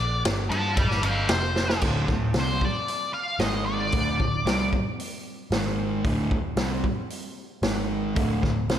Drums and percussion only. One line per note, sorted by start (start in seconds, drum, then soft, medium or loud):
0.25 snare loud
0.25 ride medium
0.51 ride medium
0.77 kick loud
0.77 ride medium
0.91 snare soft
1.03 ride medium
1.29 snare loud
1.29 ride medium
1.56 snare medium
1.70 snare medium
1.82 kick loud
1.82 crash medium
2.08 kick medium
2.08 snare soft
2.34 snare medium
2.34 open hi-hat soft
2.61 kick medium
2.88 open hi-hat soft
3.39 snare medium
3.39 open hi-hat soft
3.92 kick loud
3.92 open hi-hat soft
4.20 kick medium
4.47 snare loud
4.47 open hi-hat soft
4.73 kick medium
5.00 open hi-hat soft
5.52 snare loud
5.52 open hi-hat soft
6.04 kick loud
6.04 open hi-hat medium
6.31 kick medium
6.57 snare loud
6.57 open hi-hat soft
6.84 kick medium
7.10 open hi-hat soft
7.63 snare medium
7.63 open hi-hat soft
8.16 kick loud
8.16 open hi-hat soft
8.43 kick medium
8.43 snare soft
8.69 snare loud
8.69 open hi-hat soft